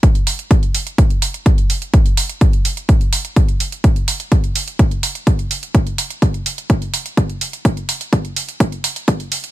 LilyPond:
\new DrumStaff \with { instrumentName = "Drums" } \drummode { \time 4/4 \tempo 4 = 126 <hh bd>16 hh16 hho16 hh16 <hh bd>16 hh16 hho16 hh16 <hh bd>16 hh16 hho16 hh16 <hh bd>16 hh16 hho16 hh16 | <hh bd>16 hh16 hho16 hh16 <hh bd>16 hh16 hho16 hh16 <hh bd>16 hh16 hho16 hh16 <hh bd>16 hh16 hho16 hh16 | <hh bd>16 hh16 hho16 hh16 <hh bd>16 hh16 hho16 hh16 <hh bd>16 hh16 hho16 hh16 <hh bd>16 hh16 hho16 hh16 | <hh bd>16 hh16 hho16 hh16 <hh bd>16 hh16 hho16 hh16 <hh bd>16 hh16 hho16 hh16 <hh bd>16 hh16 hho16 hh16 |
<hh bd>16 hh16 hho16 hh16 <hh bd>16 hh16 hho16 hh16 <hh bd>16 hh16 hho16 hh16 <hh bd>16 hh16 hho16 hh16 | }